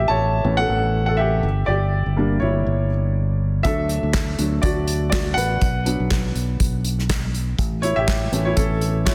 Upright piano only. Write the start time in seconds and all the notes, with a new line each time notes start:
Already playing: G4 E5
0.08 C#5 A5
0.44 E3 A3 C#4
0.57 A4 F#5
1.06 A4 F#5
1.17 G4 E5
1.66 G4 D5
2.16 G3 A#3 D4
2.40 E4 C#5
3.63 F#3 A3 D4 A4 E5
4.38 F#3 A3 D4
4.62 F#4 D5
5.10 F#4 D5
5.34 B4 F#5
5.85 F#3 B3 D4
7.82 E4 C#5
7.96 G4 E5
8.32 E3 A3 C#4
8.45 E4 C#5
8.56 C#4 A4
9.05 E4 C#5